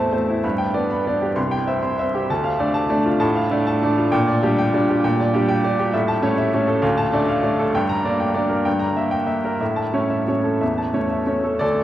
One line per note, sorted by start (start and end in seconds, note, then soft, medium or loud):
0.00 0.46 E2 medium
0.00 0.13 A3 medium
0.00 0.13 C4 medium
0.00 0.13 C5 medium
0.00 0.46 E5 medium
0.00 0.46 A5 medium
0.13 0.41 A3 soft
0.13 0.41 C4 soft
0.13 0.38 C5 medium
0.28 0.44 E4 soft
0.43 0.74 G2 medium
0.43 0.68 B5 medium
0.58 0.84 G5 medium
0.74 1.03 B3 medium
0.74 1.03 D4 soft
0.74 1.00 D5 medium
0.90 1.16 B5 medium
1.07 1.34 B3 soft
1.07 1.34 D4 medium
1.07 1.31 D5 medium
1.22 1.37 G4 medium
1.36 1.66 C2 medium
1.36 1.61 C6 medium
1.51 1.77 G5 medium
1.67 1.96 C4 medium
1.67 1.93 E5 medium
1.83 2.08 C6 medium
1.99 2.26 C4 medium
1.99 2.24 E5 medium
2.15 2.29 G4 medium
2.30 2.59 D2 medium
2.30 2.54 A5 medium
2.44 2.69 F5 medium
2.59 2.88 A3 medium
2.59 2.88 D4 medium
2.59 2.85 D5 medium
2.74 3.00 A5 medium
2.90 3.18 A3 medium
2.90 3.18 D4 medium
2.90 3.15 D5 medium
3.06 3.30 F4 medium
3.20 3.50 A2 medium
3.20 3.45 A5 medium
3.35 3.61 F5 medium
3.51 3.80 A3 medium
3.51 3.80 D4 medium
3.51 3.76 D5 medium
3.67 3.92 A5 medium
3.83 4.10 A3 medium
3.83 4.10 D4 medium
3.83 4.07 D5 medium
3.98 4.13 F4 medium
4.12 4.41 A#2 medium
4.12 4.36 G5 medium
4.27 4.52 D5 medium
4.43 4.70 G3 medium
4.43 4.71 D4 medium
4.43 4.68 G4 medium
4.58 4.83 G5 medium
4.74 5.01 G3 medium
4.74 5.01 D4 medium
4.74 4.98 D5 medium
4.89 5.13 G4 medium
5.04 5.33 A#2 medium
5.04 5.27 G5 medium
5.20 5.43 D5 medium
5.34 5.62 G3 medium
5.34 5.62 D4 medium
5.34 5.58 G4 medium
5.49 5.73 G5 medium
5.64 5.91 G3 medium
5.64 5.91 D4 medium
5.64 5.88 D5 medium
5.79 5.94 G4 medium
5.93 6.22 A2 medium
5.93 6.17 E5 medium
6.08 6.32 A5 medium
6.22 6.50 A3 medium
6.22 6.51 C#4 medium
6.22 6.47 C#5 medium
6.38 6.63 E5 medium
6.53 6.80 A3 medium
6.53 6.81 C#4 medium
6.53 6.78 C#5 medium
6.67 6.83 A4 medium
6.82 7.12 D2 medium
6.82 7.07 F5 medium
6.97 7.23 A5 medium
7.13 7.41 A3 medium
7.13 7.42 D4 medium
7.13 7.38 D5 medium
7.28 7.54 F5 medium
7.43 7.71 A3 medium
7.43 7.71 D4 medium
7.43 7.69 D5 medium
7.59 7.75 A4 medium
7.75 8.04 G2 medium
7.75 7.99 G5 medium
7.89 8.14 A#5 medium
8.05 8.33 A#3 medium
8.05 8.33 D4 medium
8.05 8.30 D5 medium
8.20 8.45 G5 medium
8.34 8.62 A#3 medium
8.34 8.63 D4 medium
8.34 8.59 D5 medium
8.49 8.65 A#4 medium
8.65 8.95 G2 medium
8.65 8.90 G5 medium
8.79 9.05 A#5 medium
8.96 9.25 A#3 soft
8.96 9.22 E5 medium
9.11 9.38 G5 medium
9.27 9.56 A#3 soft
9.27 9.53 E5 medium
9.45 9.61 A#4 medium
9.60 9.92 A2 medium
9.60 9.87 E5 medium
9.76 10.03 A5 medium
9.93 10.24 A3 medium
9.93 10.24 C#4 medium
9.93 10.21 C#5 medium
10.10 10.37 E5 medium
10.28 10.58 A3 soft
10.28 10.58 C#4 soft
10.28 10.54 C#5 medium
10.44 10.70 A4 soft
10.61 10.93 E2 medium
10.61 10.87 E5 medium
10.78 11.04 A5 soft
10.94 11.24 A3 soft
10.94 11.24 C#4 soft
10.94 11.20 C#5 medium
11.10 11.37 E5 soft
11.26 11.57 A3 soft
11.26 11.57 C#4 soft
11.26 11.54 C#5 medium
11.44 11.59 A4 soft
11.59 11.84 D2 medium
11.59 11.84 A4 medium
11.59 11.84 D5 medium